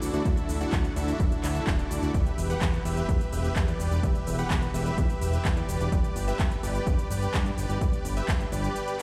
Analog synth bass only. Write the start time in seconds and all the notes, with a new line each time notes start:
0.02 D2
0.14 D2
0.25 D2
0.49 D2
0.73 D2
0.96 D2
1.20 D1
1.44 D2
1.67 D1
1.91 D2
2.03 D2
2.14 E1
2.38 E1
2.62 E1
2.85 E1
3.09 E2
3.32 E1
3.56 E2
3.80 E1
3.91 E1
4.03 E1
4.27 E1
4.51 E1
4.74 E1
4.98 E2
5.21 E1
5.45 E2
5.69 E1
5.80 E1
5.92 G1
6.16 G1
6.40 G1
6.63 G1
6.87 G2
7.10 G1
7.34 G2
7.58 G1
7.70 G1
7.81 G1
8.05 G1
8.29 G1
8.52 G1